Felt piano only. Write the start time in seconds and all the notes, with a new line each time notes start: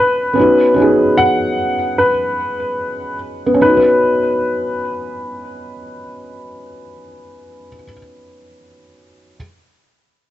0.33 B3 C#4 D#4
0.39 F#4 B4
0.74 B3 C#4 D#4
0.80 F#4 G#4
3.46 B3
3.54 C#4
3.61 D#4
3.69 F#4
3.77 B4